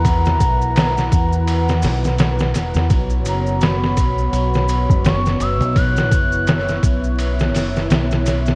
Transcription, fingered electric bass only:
0.00 0.40 E2 loud
0.40 1.09 B1 medium
1.12 1.85 E2 medium
1.83 2.54 B1 loud
2.54 2.73 E1 medium
2.75 2.88 E2 medium
2.90 3.26 B1 loud
3.26 3.95 F#1 medium
3.97 4.29 B1 medium
4.32 4.85 B1 medium
4.90 5.37 F#1 loud
5.40 5.60 F#1 medium
5.60 6.12 B1 medium
6.12 6.80 F#1 medium
6.83 7.54 B1 medium
7.54 7.87 F#1 loud
7.90 8.55 B1 medium

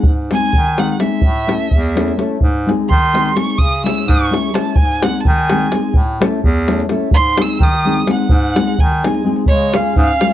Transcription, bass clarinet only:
0.04 0.34 G#2 medium
0.55 0.96 D#3 loud
1.24 1.53 A2 loud
1.73 2.14 E2 loud
2.42 2.71 G#2 loud
2.90 3.31 D#3 loud
3.58 3.88 C#3 medium
4.07 4.34 G#2 loud
4.77 5.06 G#2 medium
5.26 5.67 D#3 loud
5.94 6.23 A2 loud
6.43 6.84 E2 loud
7.11 7.41 G#2 medium
7.59 8.01 D#3 loud
8.29 8.58 G#2 loud
8.78 9.04 D#3 loud
9.47 9.76 C#3 medium
9.96 10.10 G#2 loud

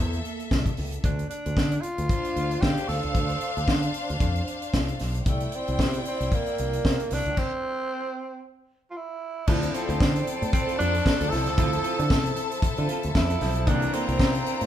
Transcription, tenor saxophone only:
1.04 1.29 D4 medium
1.30 1.82 D4 medium
1.81 2.63 F4 loud
2.62 2.90 G4 loud
2.88 3.68 A4 medium
5.29 5.57 A3 medium
5.55 6.07 C4 medium
6.08 6.36 C4 medium
6.34 7.15 A#3 medium
7.13 7.40 D4 loud
7.39 8.43 C4 loud
8.91 8.98 F4 medium
8.97 9.49 E4 medium
9.48 9.76 D4 medium
9.74 10.52 C4 medium
10.53 10.77 C4 loud
10.79 11.32 D4 loud
11.30 12.88 A4 loud
13.16 13.69 E4 loud
13.68 13.95 D4 loud
13.94 14.66 C4 loud

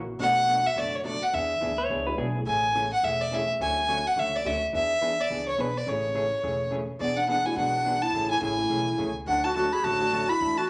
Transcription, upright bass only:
0.00 0.15 A#1 medium
0.20 0.65 B1 medium
0.76 1.22 F#1 medium
1.34 1.56 E2 medium
1.62 1.86 D2 medium
1.90 2.14 C#2 medium
2.18 2.42 B1 medium
2.47 2.92 A1 medium
3.03 3.49 E1 medium
3.60 4.05 D2 medium
4.16 4.40 C#2 medium
4.45 4.69 D2 medium
4.73 5.18 E2 medium
5.30 5.54 C#2 medium
5.58 5.82 B1 medium
5.87 6.32 A1 medium
6.43 6.89 E1 medium
7.00 7.46 E1 medium
7.56 8.02 B1 medium
8.13 8.36 A1 medium
8.41 8.66 A1 medium
8.70 8.94 B1 medium
8.99 9.23 C#2 medium
9.27 9.72 D2 medium
9.84 10.29 A1 medium
10.40 10.70 E2 medium

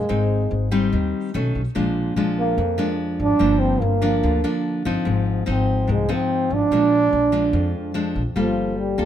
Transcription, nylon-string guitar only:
0.09 0.90 G#2 medium
0.09 0.68 C4 medium
0.09 0.68 D#4 medium
0.71 1.30 G3 medium
0.71 1.30 C4 medium
0.71 1.30 D#4 medium
0.93 1.32 D#3 medium
1.34 1.60 D#3 medium
1.34 1.60 A3 medium
1.34 1.61 C#4 medium
1.75 2.56 A#2 medium
1.75 2.13 F3 medium
1.75 2.13 G#3 medium
1.75 2.13 D4 medium
2.17 2.57 F3 medium
2.17 2.58 G#3 medium
2.17 2.58 D4 medium
2.58 3.38 F2 medium
2.78 3.37 F3 medium
2.78 3.37 G#3 medium
2.78 3.37 D4 medium
3.39 4.20 G2 medium
3.39 3.81 F3 medium
3.39 3.81 A#3 medium
3.39 3.81 D4 medium
4.02 4.40 F3 medium
4.02 4.40 A#3 medium
4.02 4.40 D4 medium
4.23 5.04 D3 medium
4.44 4.82 F3 medium
4.44 4.82 A#3 medium
4.44 4.82 D4 medium
4.85 5.44 F3 medium
4.85 5.44 C4 medium
4.85 5.44 D#4 medium
5.05 5.86 G#2 medium
5.46 6.05 F3 medium
5.46 6.05 C4 medium
5.46 6.06 D#4 medium
5.87 6.69 G#2 medium
6.09 6.68 F3 medium
6.09 6.68 C4 medium
6.09 6.68 D#4 medium
6.72 7.52 A#2 medium
6.72 7.30 F3 medium
6.72 7.30 G#3 medium
6.72 7.31 D4 medium
7.32 7.91 F3 medium
7.32 7.92 G#3 medium
7.32 7.92 D4 medium
7.53 8.34 F2 medium
7.94 8.21 F3 medium
7.94 8.22 G#3 medium
7.94 8.22 D4 medium
8.36 9.05 G3 medium
8.36 8.95 A#3 medium
8.36 8.95 F4 medium
8.36 8.96 A4 medium
8.98 9.05 A#3 medium
8.98 9.05 F4 medium
8.98 9.05 A4 medium

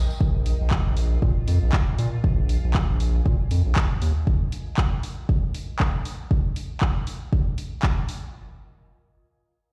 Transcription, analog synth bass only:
0.21 0.54 A#1 loud
0.61 0.78 A#1 medium
0.86 1.17 A#1 medium
1.22 1.33 A#2 medium
1.48 1.58 F2 medium
1.63 1.70 A#1 medium
1.99 2.09 A#2 medium
2.24 2.57 A#1 medium
2.64 2.81 A#1 medium
2.90 3.21 A#1 medium
3.26 3.36 A#2 medium
3.51 3.62 F2 medium
3.66 3.73 A#1 medium
4.02 4.13 D#2 medium

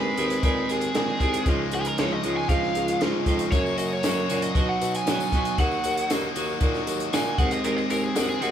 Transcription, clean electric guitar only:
0.00 0.16 D#3 medium
0.00 0.18 G#3 medium
0.00 0.17 C4 medium
0.00 0.19 G#4 loud
0.17 0.42 D#3 medium
0.17 0.43 G#3 medium
0.17 0.43 C4 medium
0.17 0.44 G#4 medium
0.44 0.94 D#3 medium
0.44 0.94 G#3 medium
0.44 0.94 C4 loud
0.44 0.95 G#4 loud
0.95 1.19 D#3 medium
0.95 1.20 G#3 medium
0.95 1.21 C4 medium
0.95 1.21 G#4 medium
1.21 1.45 D#3 medium
1.21 1.45 G#3 medium
1.21 1.45 C4 medium
1.21 1.46 G#4 loud
1.47 1.97 C#3 loud
1.47 1.98 F3 medium
1.47 1.98 G#3 loud
1.47 1.99 D#4 loud
1.47 1.99 F4 loud
1.98 2.23 C#3 medium
1.98 2.23 F3 medium
1.98 2.24 G#3 medium
1.98 2.24 D#4 medium
1.98 2.25 F4 medium
2.24 2.48 C#3 medium
2.24 2.49 F3 medium
2.24 2.49 G#3 medium
2.24 2.49 D#4 medium
2.24 2.50 F4 medium
2.49 3.00 C#3 medium
2.49 3.01 F3 loud
2.49 3.01 G#3 medium
2.49 3.02 D#4 loud
2.49 3.02 F4 loud
3.01 3.25 C#3 medium
3.01 3.26 F3 medium
3.01 3.26 G#3 medium
3.01 3.27 D#4 medium
3.01 3.27 F4 loud
3.26 3.51 C#3 medium
3.26 3.51 F3 medium
3.26 3.51 G#3 medium
3.26 3.52 D#4 medium
3.26 3.52 F4 loud
3.52 4.03 F#2 medium
3.52 4.03 C#3 medium
3.52 4.04 F#3 medium
3.52 4.04 A#3 medium
3.52 4.05 C#4 loud
3.52 4.06 F#4 loud
4.04 4.28 F#2 medium
4.04 4.28 C#3 medium
4.04 4.29 F#3 medium
4.04 4.29 A#3 medium
4.04 4.30 C#4 medium
4.04 4.30 F#4 medium
4.29 4.54 F#2 medium
4.29 4.54 C#3 medium
4.29 4.54 F#3 medium
4.29 4.54 A#3 medium
4.29 4.55 C#4 medium
4.29 4.55 F#4 medium
4.54 5.05 B2 medium
4.54 5.06 F#3 loud
4.54 5.06 B3 medium
4.54 5.07 D#4 loud
4.54 5.07 F#4 loud
5.06 5.32 B2 medium
5.06 5.32 F#3 medium
5.06 5.32 B3 medium
5.06 5.34 D#4 medium
5.06 5.33 F#4 medium
5.33 5.57 B2 medium
5.33 5.57 F#3 medium
5.33 5.57 B3 medium
5.33 5.59 D#4 medium
5.33 5.58 F#4 medium
5.59 6.09 D#3 medium
5.59 6.09 A#3 loud
5.59 6.10 D#4 loud
5.59 6.10 F#4 loud
6.09 6.35 D#3 medium
6.09 6.35 A#3 medium
6.09 6.37 D#4 medium
6.09 6.36 F#4 medium
6.35 6.59 D#3 medium
6.35 6.60 A#3 medium
6.35 6.61 D#4 medium
6.35 6.61 F#4 medium
6.60 7.11 D#3 medium
6.60 7.12 A#3 loud
6.60 7.13 D#4 loud
6.60 7.12 F#4 loud
7.12 7.37 D#3 medium
7.12 7.37 A#3 medium
7.12 7.39 D#4 medium
7.12 7.37 F#4 loud
7.38 7.63 D#3 medium
7.38 7.63 G#3 loud
7.38 7.64 C4 loud
7.38 7.64 G#4 loud
7.64 8.14 D#3 medium
7.64 8.15 G#3 loud
7.64 8.15 C4 loud
7.64 8.16 G#4 loud
8.15 8.39 D#3 medium
8.15 8.40 G#3 medium
8.15 8.40 C4 medium
8.15 8.40 G#4 medium
8.40 8.51 D#3 medium
8.40 8.51 G#3 medium
8.40 8.51 C4 medium
8.40 8.51 G#4 medium

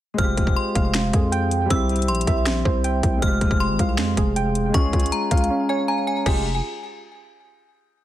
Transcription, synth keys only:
0.18 0.93 G#3 loud
0.75 1.70 F5 medium
0.95 1.71 G#3 medium
1.15 1.71 G#4 medium
1.32 1.70 G5 loud
1.71 2.45 C4 loud
2.27 3.22 E5 medium
2.46 3.22 C4 medium
2.65 3.22 C5 medium
2.84 3.22 G5 medium
3.22 3.97 G#3 medium
3.79 4.74 F5 medium
3.98 4.74 G#3 medium
4.18 4.74 G#4 medium
4.36 4.74 G5 loud
4.75 5.49 C#4 loud
5.31 6.26 F5 loud
5.50 6.26 C#4 medium
5.69 6.26 C#5 medium
5.88 6.26 G#5 medium
6.26 6.44 F4 medium
6.26 6.44 G4 medium
6.26 6.44 G#4 medium

